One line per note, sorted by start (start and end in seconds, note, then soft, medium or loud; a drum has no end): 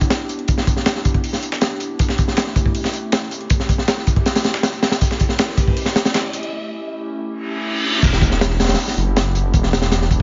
0.01 kick medium
0.01 closed hi-hat medium
0.10 snare loud
0.10 closed hi-hat medium
0.29 closed hi-hat medium
0.39 closed hi-hat soft
0.48 1.41 B3 medium
0.48 1.41 D4 medium
0.48 1.41 E4 medium
0.48 1.41 G4 medium
0.48 kick loud
0.48 closed hi-hat medium
0.58 snare medium
0.58 snare soft
0.67 kick medium
0.67 closed hi-hat medium
0.76 snare soft
0.86 snare loud
0.86 closed hi-hat medium
0.95 snare medium
1.05 kick medium
1.05 closed hi-hat medium
1.14 kick medium
1.14 closed hi-hat soft
1.24 closed hi-hat medium
1.24 open hi-hat medium
1.33 snare soft
1.43 closed hi-hat medium
1.52 snare loud
1.61 snare loud
1.61 closed hi-hat medium
1.71 closed hi-hat soft
1.80 closed hi-hat medium
1.99 2.91 A3 loud
1.99 2.91 C#4 loud
1.99 2.91 E4 medium
1.99 2.91 G4 loud
1.99 kick loud
1.99 closed hi-hat medium
1.99 riser medium
2.09 snare medium
2.09 snare soft
2.18 kick loud
2.18 closed hi-hat medium
2.28 snare medium
2.37 snare loud
2.37 closed hi-hat medium
2.37 open hi-hat medium
2.47 snare soft
2.56 kick medium
2.56 closed hi-hat medium
2.66 kick medium
2.75 closed hi-hat medium
2.75 open hi-hat medium
2.84 snare medium
2.84 snare soft
2.94 closed hi-hat medium
3.12 snare loud
3.12 closed hi-hat medium
3.31 closed hi-hat medium
3.41 closed hi-hat soft
3.50 4.80 A3 loud
3.50 4.80 C#4 medium
3.50 4.80 E4 medium
3.50 4.80 G4 loud
3.50 kick loud
3.50 closed hi-hat medium
3.60 snare soft
3.69 kick medium
3.69 closed hi-hat medium
3.78 snare medium
3.88 snare loud
3.88 closed hi-hat medium
3.97 snare medium
4.07 kick medium
4.07 closed hi-hat medium
4.16 kick loud
4.16 closed hi-hat soft
4.26 snare loud
4.26 closed hi-hat medium
4.35 snare loud
4.35 closed hi-hat medium
4.44 snare loud
4.44 closed hi-hat medium
4.54 snare loud
4.63 snare loud
4.63 closed hi-hat medium
4.73 closed hi-hat soft
4.83 snare loud
4.83 closed hi-hat medium
4.92 snare loud
4.92 closed hi-hat medium
5.01 5.93 A3 loud
5.01 5.93 C#4 loud
5.01 5.93 E4 loud
5.01 5.93 G4 loud
5.01 kick loud
5.01 closed hi-hat medium
5.11 snare medium
5.11 snare soft
5.19 kick medium
5.19 closed hi-hat medium
5.29 snare soft
5.39 snare loud
5.39 closed hi-hat medium
5.39 open hi-hat medium
5.49 snare soft
5.57 kick medium
5.57 closed hi-hat medium
5.68 kick loud
5.77 closed hi-hat medium
5.77 open hi-hat medium
5.86 snare medium
5.96 snare loud
5.96 closed hi-hat medium
6.05 snare loud
6.05 closed hi-hat medium
6.14 snare loud
6.14 closed hi-hat medium
6.33 closed hi-hat medium
6.43 closed hi-hat soft
6.52 7.45 A3 medium
6.52 7.45 C#4 medium
6.52 7.45 E4 medium
6.52 7.45 G4 loud
7.28 reverse cymbal medium
8.03 8.77 E1 loud
8.03 8.95 B3 loud
8.03 8.95 D4 loud
8.03 8.95 E4 loud
8.03 8.95 G4 loud
8.03 kick loud
8.03 closed hi-hat medium
8.03 crash medium
8.03 sub drop medium
8.13 snare soft
8.22 kick medium
8.22 closed hi-hat medium
8.31 snare soft
8.41 snare loud
8.41 closed hi-hat medium
8.50 snare soft
8.60 snare medium
8.60 closed hi-hat medium
8.64 snare medium
8.64 closed hi-hat medium
8.69 snare medium
8.69 closed hi-hat medium
8.74 snare medium
8.74 closed hi-hat medium
8.78 open hi-hat medium
8.88 snare soft
8.97 9.53 F#1 loud
8.97 closed hi-hat medium
9.16 snare loud
9.16 closed hi-hat loud
9.35 closed hi-hat medium
9.54 10.22 E1 loud
9.54 10.22 B3 medium
9.54 10.22 D4 medium
9.54 10.22 E4 medium
9.54 10.22 G4 loud
9.54 kick loud
9.54 closed hi-hat medium
9.63 snare medium
9.73 snare loud
9.73 closed hi-hat medium
9.82 snare loud
9.82 closed hi-hat medium
9.92 snare loud
9.92 closed hi-hat medium
10.02 snare medium
10.11 kick medium
10.11 closed hi-hat medium